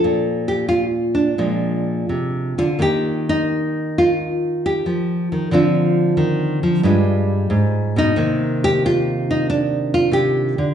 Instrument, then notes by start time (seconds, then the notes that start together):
nylon-string guitar
Already playing: F3 A4
0.04 A#2
0.48 G4
0.69 F4
1.15 D4
1.38 A#2 F3 G#3
2.09 C3
2.58 D3 F4
2.79 D#3 A#3 D#4 G4
3.29 D#4
3.98 F4
4.66 G4
4.86 F3
5.32 D#3
5.51 D3 F3 C4 D4 F4
6.17 D#3
6.63 F3
6.83 G2 G3 G#3 F4
7.50 G#2
7.96 B2 D#4
8.16 C3 D#3 A#3
8.64 G4
8.86 F4
9.31 D#4
9.50 D4
9.94 F4
10.11 C3 G4
10.58 D3